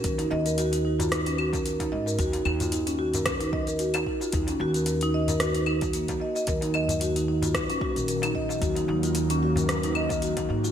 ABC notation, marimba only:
X:1
M:4/4
L:1/16
Q:"Swing 16ths" 1/4=112
K:Ebm
V:1 name="Marimba"
B E e B G E E F E D G B B E e B | G E E F E D G B B E e B G E E F | E D G B B E e B G E E G B, G e e | B E e e G E E F E D G B B E e e |
G E E F E D G B B E e e G E E F |]